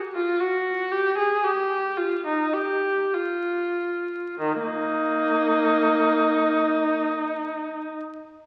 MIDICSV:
0, 0, Header, 1, 2, 480
1, 0, Start_track
1, 0, Key_signature, -3, "major"
1, 0, Tempo, 1047120
1, 410, Time_signature, 3, 2, 24, 8
1, 900, Tempo, 1149425
1, 1380, Tempo, 1265823
1, 2340, Tempo, 1242236
1, 3429, End_track
2, 0, Start_track
2, 0, Title_t, "Viola"
2, 0, Program_c, 0, 41
2, 68, Note_on_c, 0, 65, 67
2, 177, Note_off_c, 0, 65, 0
2, 182, Note_on_c, 0, 66, 69
2, 414, Note_off_c, 0, 66, 0
2, 420, Note_on_c, 0, 67, 77
2, 535, Note_off_c, 0, 67, 0
2, 541, Note_on_c, 0, 68, 68
2, 655, Note_off_c, 0, 68, 0
2, 661, Note_on_c, 0, 67, 65
2, 903, Note_on_c, 0, 65, 61
2, 905, Note_off_c, 0, 67, 0
2, 1018, Note_off_c, 0, 65, 0
2, 1024, Note_on_c, 0, 63, 55
2, 1136, Note_off_c, 0, 63, 0
2, 1139, Note_on_c, 0, 67, 65
2, 1382, Note_off_c, 0, 67, 0
2, 1390, Note_on_c, 0, 65, 56
2, 1867, Note_off_c, 0, 65, 0
2, 1868, Note_on_c, 0, 51, 57
2, 1948, Note_off_c, 0, 51, 0
2, 1950, Note_on_c, 0, 63, 61
2, 1951, Note_on_c, 0, 58, 49
2, 2892, Note_off_c, 0, 58, 0
2, 3214, Note_off_c, 0, 63, 0
2, 3429, End_track
0, 0, End_of_file